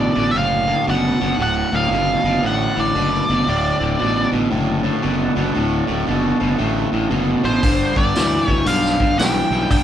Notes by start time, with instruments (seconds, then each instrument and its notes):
Already playing: overdriven electric guitar D2 B2, tonewheel organ D4 F#4 A4, lead electric guitar D5
0.15 fingered electric bass A1, overdriven electric guitar D2 B2
0.31 overdriven electric guitar D2 A2, lead electric guitar E5
0.35 fingered electric bass F#1, lead electric guitar F5
0.67 overdriven electric guitar D2 A2
0.87 fingered electric bass F#1, overdriven electric guitar D2 B2, lead electric guitar F#5
1.20 fingered electric bass F#1, overdriven electric guitar D2 B2
1.39 fingered electric bass D1, overdriven electric guitar D2 A2, lead electric guitar F#5
1.72 fingered electric bass D1, overdriven electric guitar D2 A2, lead electric guitar F5
1.91 fingered electric bass F#1, overdriven electric guitar D2 B2
2.24 fingered electric bass F#1, overdriven electric guitar D2 B2
2.42 fingered electric bass A1, overdriven electric guitar D2 A2
2.46 lead electric guitar F#5
2.76 fingered electric bass A1, overdriven electric guitar D2 A2
2.80 lead electric guitar D5
2.95 fingered electric bass F#1, overdriven electric guitar D2 B2
3.29 fingered electric bass F#1, overdriven electric guitar D2 B2
3.46 fingered electric bass D1, overdriven electric guitar D2 A2, tonewheel organ A3 D4 F#4, lead electric guitar D5
3.80 fingered electric bass D1, overdriven electric guitar D2 A2
3.99 fingered electric bass A1, overdriven electric guitar D2 B2
4.31 fingered electric bass A1, overdriven electric guitar D2 B2
4.50 fingered electric bass F#1, overdriven electric guitar D2 A2
4.83 overdriven electric guitar D2 A2
5.02 fingered electric bass F#1, overdriven electric guitar D2 B2
5.36 fingered electric bass F#1, overdriven electric guitar D2 B2
5.54 fingered electric bass D1, overdriven electric guitar D2 A2
5.87 fingered electric bass D1, overdriven electric guitar D2 A2
6.07 fingered electric bass F#1, overdriven electric guitar D2 B2
6.40 fingered electric bass F#1, overdriven electric guitar D2 B2
6.58 fingered electric bass A1, overdriven electric guitar D2 A2
6.92 fingered electric bass A1, overdriven electric guitar D2 A2
7.10 fingered electric bass F#1, overdriven electric guitar D2 B2
7.43 fingered electric bass A1, overdriven electric guitar D2 B2, lead electric guitar C5
7.63 fingered electric bass G1, overdriven electric guitar G2 D3, tonewheel organ D4 G4 B4, kick, open hi-hat
7.96 fingered electric bass G1, overdriven electric guitar G2 D3, lead electric guitar D5, kick
8.14 fingered electric bass D2, overdriven electric guitar G2 E3, snare, open hi-hat
8.48 fingered electric bass D2, overdriven electric guitar G2 E3, lead electric guitar C#5, kick
8.66 fingered electric bass B1, overdriven electric guitar G2 D3, lead electric guitar F5, open hi-hat
8.85 snare
9.00 overdriven electric guitar G2 D3, kick
9.18 fingered electric bass B1, overdriven electric guitar G2 E3, lead electric guitar G5, snare, open hi-hat
9.50 fingered electric bass B1, overdriven electric guitar G2 E3
9.70 fingered electric bass G1, overdriven electric guitar G2 D3, lead electric guitar G5, kick, open hi-hat